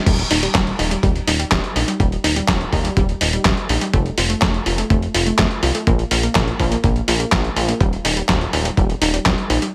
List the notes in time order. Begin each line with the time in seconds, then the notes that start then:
0.06 D#1 G3, kick, closed hi-hat, crash
0.19 closed hi-hat
0.31 D#1 D#4, open hi-hat
0.43 G3, closed hi-hat
0.55 D#1 G3, kick, snare, clap, closed hi-hat
0.67 closed hi-hat
0.79 D#1 D#4, open hi-hat
0.91 G3, closed hi-hat
1.03 D#1 G3, kick, closed hi-hat
1.16 closed hi-hat
1.27 D#1 D#4, open hi-hat
1.39 G3, closed hi-hat
1.52 D#1 G3, kick, snare, clap, closed hi-hat
1.64 closed hi-hat
1.76 A#1 D#4, open hi-hat
1.88 G3, closed hi-hat
2.00 D#1 G3, kick, closed hi-hat
2.12 closed hi-hat
2.24 D#1 D#4, open hi-hat
2.36 G3, closed hi-hat
2.48 D#1 G3, kick, snare, clap, closed hi-hat
2.61 closed hi-hat
2.73 D#1 D#4, kick, open hi-hat
2.85 G3, closed hi-hat
2.97 D#1 G3, kick, closed hi-hat
3.09 closed hi-hat
3.21 D#1 D#4, open hi-hat
3.33 G3, closed hi-hat
3.45 D#1 G3, kick, snare, clap, closed hi-hat
3.57 closed hi-hat
3.69 A#1 D#4, open hi-hat
3.81 G3, closed hi-hat
3.93 F1 A3, kick, closed hi-hat
4.06 closed hi-hat
4.18 F1 F4, open hi-hat
4.30 A3, closed hi-hat
4.42 F1 A3, kick, snare, clap, closed hi-hat
4.54 closed hi-hat
4.66 F1 F4, open hi-hat
4.78 A3, closed hi-hat
4.90 F1 A3, kick, closed hi-hat
5.02 closed hi-hat
5.14 F1 F4, open hi-hat
5.26 A3, closed hi-hat
5.39 F1 A3, kick, snare, clap, closed hi-hat
5.51 closed hi-hat
5.63 C2 F4, open hi-hat
5.75 A3, closed hi-hat
5.87 A#1 A#3, kick, closed hi-hat
5.99 closed hi-hat
6.11 A#1 F4, open hi-hat
6.23 A#3, closed hi-hat
6.35 A#1 A#3, kick, snare, clap, closed hi-hat
6.47 closed hi-hat
6.60 A#1 F4, kick, open hi-hat
6.72 A#3, closed hi-hat
6.84 A#1 A#3, kick, closed hi-hat
6.96 closed hi-hat
7.08 A#1 F4, open hi-hat
7.20 A#3, closed hi-hat
7.32 A#1 A#3, kick, snare, clap, closed hi-hat
7.44 closed hi-hat
7.56 A#1 F4, open hi-hat
7.68 A#3, closed hi-hat
7.80 D#1 G3, kick, closed hi-hat
7.93 closed hi-hat
8.05 D#1 D#4, open hi-hat
8.17 G3, closed hi-hat
8.29 D#1 G3, kick, snare, clap, closed hi-hat
8.41 closed hi-hat
8.53 D#1 D#4, open hi-hat
8.65 G3, closed hi-hat
8.77 D#1 G3, kick, closed hi-hat
8.90 closed hi-hat
9.01 D#1 D#4, open hi-hat
9.14 G3, closed hi-hat
9.26 D#1 G3, kick, snare, clap, closed hi-hat
9.38 closed hi-hat
9.50 A#1 D#4, open hi-hat
9.62 G3, closed hi-hat